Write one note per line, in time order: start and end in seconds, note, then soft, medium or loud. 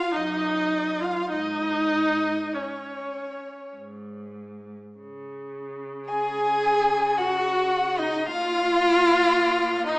0.00 0.14 F4 medium
0.00 0.15 F5 medium
0.00 0.17 F5 medium
0.12 1.11 F#2 medium
0.12 1.02 D#4 medium
0.12 1.03 D#5 medium
0.12 1.05 D#5 medium
1.00 1.30 F4 medium
1.00 1.31 F5 medium
1.00 1.32 F5 medium
1.30 2.33 G#2 medium
1.30 2.55 D#4 loud
1.30 2.55 D#5 medium
1.30 2.56 D#5 medium
2.54 3.76 C#4 medium
2.54 3.76 C#5 medium
2.54 3.77 C#5 medium
3.76 4.78 G#2 medium
4.98 8.27 C#3 medium
6.09 7.19 G#4 medium
6.09 7.21 G#4 medium
6.09 7.19 G#5 loud
7.17 8.01 F#4 medium
7.17 8.00 F#4 loud
7.17 8.00 F#5 loud
7.98 8.27 D#4 medium
7.98 8.28 D#4 medium
7.98 8.27 D#5 loud
8.25 9.99 A#2 medium
8.25 9.89 F4 loud
8.25 9.86 F4 loud
8.25 9.85 F5 loud
9.86 9.99 D#4 medium
9.86 9.99 D#4 loud
9.86 9.99 D#5 loud